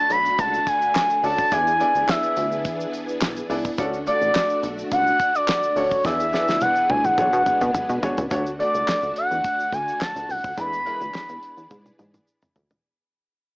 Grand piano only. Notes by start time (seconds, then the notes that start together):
Already playing: D4 F#4 A4 C#5 D5
1.23 C#4 D4 F#4 A4 D5
1.51 B3 D4 E4 G#4 D5
1.80 B3 D4 E4 G#4 D5
3.50 B3 D4 E4 G#4 D5
3.78 C#4 D4 F#4 A4 D5
4.06 A3 D4 F4 A4 D5
4.13 F#4
5.76 C#4 D4 F#4 A4 D5
6.04 B3 D4 E4 G#4 D5
6.33 B3 D4 E4 G#4 D5
7.17 B3 D4 F#4 G#4 C#5
8.03 B3 D4 F#4 G#4 C#5
8.31 A3 D4 F#4 C#5
8.59 A3 D4 F#4 D5
10.57 G#3 D4 E4 B4
10.85 G#3 D4 E4 A#4
10.93 B4